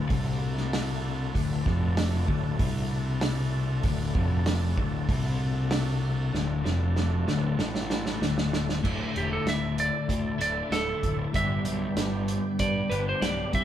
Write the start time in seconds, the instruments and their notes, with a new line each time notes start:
Already playing: tonewheel organ A3 D4 F#4 A4
0.09 picked electric bass C2, clean electric guitar C3, kick, open hi-hat
0.57 snare
0.73 snare, open hi-hat
1.34 picked electric bass D1, clean electric guitar D2, kick, open hi-hat
1.65 picked electric bass F1, clean electric guitar F2, kick, snare
1.97 snare, open hi-hat
2.27 picked electric bass D1, clean electric guitar D2, kick
2.59 picked electric bass C2, clean electric guitar C3, kick, open hi-hat
3.21 snare, open hi-hat
3.83 picked electric bass D1, clean electric guitar D2, kick, open hi-hat
4.15 picked electric bass F1, clean electric guitar F2, kick
4.46 snare, open hi-hat
4.78 picked electric bass D1, clean electric guitar D2, kick
5.09 picked electric bass C2, clean electric guitar C3, kick, open hi-hat
5.71 snare, open hi-hat
6.34 picked electric bass D1, clean electric guitar D2, snare
6.64 picked electric bass F1, clean electric guitar F2, snare
6.96 snare
7.27 picked electric bass D1, clean electric guitar D2, snare
7.59 picked electric bass A1, clean electric guitar A2, snare
7.75 snare
7.90 snare
8.06 snare
8.21 picked electric bass D1, clean electric guitar D2, snare
8.38 snare
8.53 snare
8.69 snare
8.83 picked electric bass D1, clean electric guitar D2 A2 D3 A3 E4, tonewheel organ A3 D4 E4 A4, kick, crash
9.16 picked electric bass E1, electric slide guitar G4, closed hi-hat
9.33 electric slide guitar A4
9.46 picked electric bass D1, electric slide guitar E5, snare, closed hi-hat
9.78 electric slide guitar D5, closed hi-hat
10.09 picked electric bass D2, kick, closed hi-hat
10.38 picked electric bass D1, clean electric guitar D2 A2 D3 A3 E4, electric slide guitar D5, closed hi-hat
10.68 picked electric bass D1, clean electric guitar D2 A2 D3 A3 E4, electric slide guitar A4, snare, closed hi-hat
11.03 picked electric bass D1, kick, closed hi-hat
11.33 picked electric bass G1, clean electric guitar G2 D3 G3 B3 D4 G4, tonewheel organ G3 B3 G4, electric slide guitar E5, kick, closed hi-hat
11.65 picked electric bass B1, closed hi-hat
11.96 picked electric bass G1, snare, closed hi-hat
12.28 closed hi-hat
12.59 picked electric bass G2, electric slide guitar D5, kick, closed hi-hat
12.90 picked electric bass G1, clean electric guitar D3 G3 B3 D4 G4, electric slide guitar B4, closed hi-hat
12.94 clean electric guitar G2
13.09 electric slide guitar C5
13.21 picked electric bass B1, clean electric guitar G2 D3 G3 B3 D4 G4, electric slide guitar D5, snare, closed hi-hat
13.51 picked electric bass C2, clean electric guitar C3 G3 C4 G4 C5, tonewheel organ G3 C4, electric slide guitar E5, kick, closed hi-hat